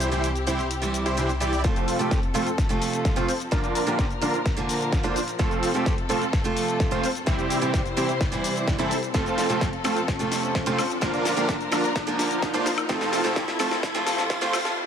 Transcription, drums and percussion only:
0.00 closed hi-hat, shaker
0.12 closed hi-hat, shaker
0.24 closed hi-hat, shaker
0.36 closed hi-hat, shaker
0.47 closed hi-hat, shaker
0.59 closed hi-hat, shaker
0.71 closed hi-hat, shaker
0.82 closed hi-hat, shaker
0.94 closed hi-hat, shaker
1.06 closed hi-hat, shaker
1.18 closed hi-hat, shaker
1.29 closed hi-hat, shaker
1.41 closed hi-hat, shaker
1.53 closed hi-hat, shaker
1.64 kick, snare, closed hi-hat, shaker
1.76 closed hi-hat, shaker
1.88 open hi-hat, shaker
2.00 closed hi-hat, shaker
2.11 kick, snare, closed hi-hat, shaker
2.23 closed hi-hat
2.35 open hi-hat, shaker
2.46 closed hi-hat, shaker
2.58 kick, snare, closed hi-hat, shaker
2.70 closed hi-hat, shaker
2.82 open hi-hat, shaker
2.93 closed hi-hat, shaker
3.05 kick, snare, closed hi-hat, shaker
3.17 closed hi-hat, shaker
3.28 open hi-hat, shaker
3.40 closed hi-hat, shaker
3.52 kick, snare, closed hi-hat, shaker
3.64 closed hi-hat, shaker
3.75 open hi-hat, shaker
3.87 closed hi-hat, shaker
3.99 kick, snare, closed hi-hat, shaker
4.10 closed hi-hat, shaker
4.22 open hi-hat, shaker
4.34 closed hi-hat, shaker
4.46 kick, snare, closed hi-hat, shaker
4.57 closed hi-hat, shaker
4.69 open hi-hat, shaker
4.81 closed hi-hat, shaker
4.92 kick, snare, closed hi-hat, shaker
5.04 closed hi-hat, shaker
5.16 open hi-hat, shaker
5.28 closed hi-hat, shaker
5.39 kick, snare, closed hi-hat, shaker
5.51 closed hi-hat, shaker
5.63 open hi-hat, shaker
5.75 closed hi-hat, shaker
5.86 kick, snare, closed hi-hat, shaker
5.98 closed hi-hat
6.10 open hi-hat, shaker
6.21 closed hi-hat, shaker
6.33 kick, snare, closed hi-hat, shaker
6.45 closed hi-hat, shaker
6.57 open hi-hat, shaker
6.68 closed hi-hat, shaker
6.80 kick, snare, closed hi-hat, shaker
6.92 closed hi-hat, shaker
7.04 open hi-hat, shaker
7.15 closed hi-hat, shaker
7.27 kick, snare, closed hi-hat, shaker
7.39 closed hi-hat, shaker
7.50 open hi-hat, shaker
7.62 closed hi-hat, shaker
7.74 kick, snare, closed hi-hat, shaker
7.86 closed hi-hat, shaker
7.97 open hi-hat, shaker
8.09 closed hi-hat, shaker
8.21 kick, snare, closed hi-hat, shaker
8.32 closed hi-hat, shaker
8.44 open hi-hat, shaker
8.56 closed hi-hat, shaker
8.68 kick, snare, closed hi-hat, shaker
8.79 closed hi-hat, shaker
8.91 open hi-hat, shaker
9.03 closed hi-hat, shaker
9.14 kick, snare, closed hi-hat, shaker
9.26 closed hi-hat, shaker
9.38 snare, open hi-hat, shaker
9.50 closed hi-hat, shaker
9.61 kick, snare, closed hi-hat, shaker
9.73 closed hi-hat
9.85 snare, open hi-hat, high woodblock, shaker
9.96 closed hi-hat, shaker
10.08 kick, snare, closed hi-hat, shaker
10.20 closed hi-hat, shaker
10.32 snare, open hi-hat, shaker
10.43 closed hi-hat, shaker
10.55 kick, snare, closed hi-hat, shaker
10.67 closed hi-hat, shaker
10.78 snare, open hi-hat, high woodblock, shaker
10.90 closed hi-hat, shaker
11.02 kick, snare, closed hi-hat, shaker
11.14 closed hi-hat, shaker
11.25 snare, open hi-hat, shaker
11.37 closed hi-hat, shaker
11.49 kick, snare, closed hi-hat, shaker
11.61 closed hi-hat, shaker
11.72 snare, open hi-hat, high woodblock, shaker
11.84 closed hi-hat, shaker
11.96 kick, snare, closed hi-hat, shaker
12.07 closed hi-hat, shaker
12.19 snare, open hi-hat, shaker
12.31 closed hi-hat, shaker
12.42 kick, snare, closed hi-hat, shaker
12.54 closed hi-hat, shaker
12.66 snare, open hi-hat, shaker
12.78 closed hi-hat, high woodblock, shaker
12.89 kick, snare, closed hi-hat, shaker
13.01 snare, closed hi-hat, shaker
13.13 snare, open hi-hat, shaker
13.25 snare, closed hi-hat, shaker
13.36 kick, snare, closed hi-hat, shaker
13.48 snare, closed hi-hat
13.60 snare, open hi-hat, high woodblock, shaker
13.71 snare, closed hi-hat, shaker
13.83 kick, snare, closed hi-hat, shaker
13.95 snare, closed hi-hat, shaker
14.07 snare, open hi-hat, shaker
14.18 snare, closed hi-hat, shaker
14.30 kick, snare, closed hi-hat, shaker
14.42 snare, closed hi-hat, shaker
14.53 snare, open hi-hat, high woodblock, shaker
14.65 snare, closed hi-hat, shaker

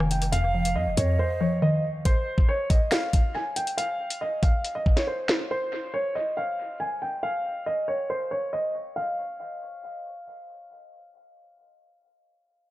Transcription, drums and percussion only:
0.00 cross-stick
0.11 closed hi-hat
0.22 closed hi-hat
0.33 closed hi-hat
0.65 closed hi-hat
0.97 closed hi-hat
2.05 kick, closed hi-hat
2.38 kick
2.70 kick, closed hi-hat
2.91 finger snap, snare, closed hi-hat
3.13 kick, closed hi-hat
3.56 closed hi-hat
3.67 closed hi-hat
3.78 closed hi-hat
4.10 closed hi-hat
4.43 kick, closed hi-hat
4.65 closed hi-hat
4.86 kick
4.97 snare, closed hi-hat
5.28 finger snap, snare, closed hi-hat

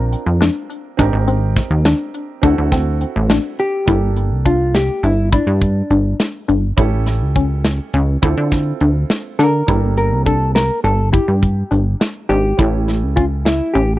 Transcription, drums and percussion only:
0.13 closed hi-hat
0.42 snare, closed hi-hat
0.70 closed hi-hat
0.99 kick, closed hi-hat
1.28 closed hi-hat
1.56 kick, snare, closed hi-hat
1.85 snare, closed hi-hat
2.14 closed hi-hat
2.43 kick, closed hi-hat
2.72 kick, snare, closed hi-hat
3.01 closed hi-hat
3.30 snare, closed hi-hat
3.59 closed hi-hat
3.87 kick, closed hi-hat
4.17 closed hi-hat
4.46 kick, closed hi-hat
4.75 snare, closed hi-hat
5.04 closed hi-hat
5.33 kick, closed hi-hat
5.61 kick, closed hi-hat
5.91 closed hi-hat
6.20 snare, closed hi-hat
6.49 closed hi-hat
6.78 kick, closed hi-hat
7.06 snare, closed hi-hat
7.35 kick, closed hi-hat
7.65 snare, closed hi-hat
7.93 closed hi-hat
8.23 kick, closed hi-hat
8.52 kick, snare, closed hi-hat
8.81 closed hi-hat
9.10 snare, closed hi-hat
9.39 snare, closed hi-hat
9.68 kick, closed hi-hat
9.97 closed hi-hat
10.26 kick, closed hi-hat
10.56 snare, closed hi-hat
10.85 closed hi-hat
11.14 kick, closed hi-hat
11.43 kick, closed hi-hat
11.72 closed hi-hat
12.01 snare, closed hi-hat
12.30 closed hi-hat
12.59 kick, closed hi-hat
12.88 snare, closed hi-hat
13.17 kick, closed hi-hat
13.46 snare, closed hi-hat
13.75 closed hi-hat

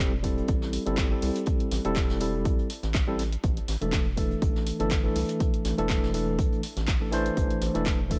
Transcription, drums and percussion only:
0.24 kick, closed hi-hat, open hi-hat
0.37 closed hi-hat
0.48 kick, closed hi-hat
0.62 snare
0.73 closed hi-hat, open hi-hat
0.86 closed hi-hat
0.98 kick, snare, clap, closed hi-hat
1.22 open hi-hat
1.35 closed hi-hat
1.46 kick, closed hi-hat
1.60 closed hi-hat
1.71 snare, closed hi-hat, open hi-hat
1.85 closed hi-hat
1.95 kick, snare, clap, closed hi-hat
2.09 snare
2.20 closed hi-hat, open hi-hat
2.45 kick, closed hi-hat
2.59 closed hi-hat
2.70 closed hi-hat, open hi-hat
2.83 snare, closed hi-hat
2.94 kick, snare, clap, closed hi-hat
3.19 snare, closed hi-hat, open hi-hat
3.32 closed hi-hat
3.43 kick, closed hi-hat
3.57 closed hi-hat
3.68 snare, closed hi-hat, open hi-hat
3.82 closed hi-hat
3.93 kick, snare, clap, closed hi-hat
4.17 kick, closed hi-hat, open hi-hat
4.31 closed hi-hat
4.42 kick, closed hi-hat
4.56 snare
4.66 closed hi-hat, open hi-hat
4.80 closed hi-hat
4.91 kick, snare, clap, closed hi-hat
5.15 open hi-hat
5.29 closed hi-hat
5.40 kick, closed hi-hat
5.54 closed hi-hat
5.65 snare, closed hi-hat, open hi-hat
5.78 closed hi-hat
5.89 kick, snare, clap, closed hi-hat
6.03 snare
6.14 closed hi-hat, open hi-hat
6.39 kick, closed hi-hat
6.52 closed hi-hat
6.63 closed hi-hat, open hi-hat
6.76 snare, closed hi-hat
6.87 kick, snare, clap, closed hi-hat
7.12 snare, closed hi-hat, open hi-hat
7.26 closed hi-hat
7.37 kick, closed hi-hat
7.50 closed hi-hat
7.61 snare, closed hi-hat, open hi-hat
7.75 closed hi-hat
7.86 kick, snare, clap, closed hi-hat
8.11 kick, closed hi-hat, open hi-hat

